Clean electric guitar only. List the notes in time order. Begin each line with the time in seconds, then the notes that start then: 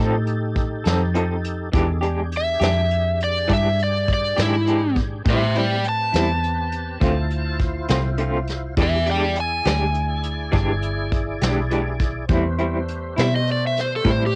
Already playing: F3 C4 D#4 A4
0.84 C4 D#4 A4
1.14 F3 C4 D#4 A4
1.72 E3 G#3 D4 G4
2.01 G#3 D4 G4
2.60 G#3 D4 G4
3.48 E3 G#3 D4 G4
4.37 G#3 D4 G4
4.66 E3 G#3 D4 G4
5.25 A2 G3 C4 E4
5.55 G3 C4 E4
6.12 G3 C4 E4
7.00 D3 A3 C4 F4
7.89 A3 C4 F4
8.18 D3 A3 C4 F4
8.77 E3 G#3 D4 G4
9.06 G#3 D4 G4
9.66 G#3 D4 G4
10.52 E3 G#3 D4 G4
11.42 G#3 D4 G4
11.70 E3 G#3 D4 G4
12.29 A2 G3 C4 E4
12.59 G3 C4 E4
13.16 G3 C4 E4
14.04 A2 G3 C4 E4